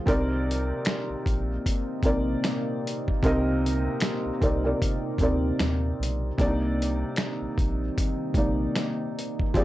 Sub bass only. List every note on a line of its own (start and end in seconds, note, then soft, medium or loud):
0.07 0.73 C2 loud
1.09 1.16 A#1 soft
1.26 1.59 A#1 medium
2.03 2.36 A#1 medium
3.23 3.88 C2 loud
4.25 4.32 C2 medium
4.42 4.74 C2 medium
5.19 5.52 D2 loud
5.60 5.93 D#2 medium
6.00 6.32 B1 medium
6.39 7.04 C2 loud
7.41 7.48 A#1 soft
7.58 7.90 A#1 medium
8.35 8.68 A#1 medium
9.55 9.64 F1 medium